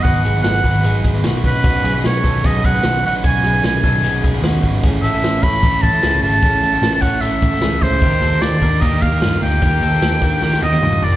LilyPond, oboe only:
\new Staff \with { instrumentName = "Oboe" } { \time 4/4 \key b \mixolydian \tempo 4 = 150 fis''4 fis''4. r4 b'8~ | b'4 cis''4 dis''8 fis''4 fis''8 | gis''4 gis''4. r4. | r8 e''4 b''4 a''4 a''8~ |
a''4. fis''8 e''4. c''8~ | c''4 d''4 dis''8 eis''4 g''8~ | g''2~ g''8 dis''4 d''8 | }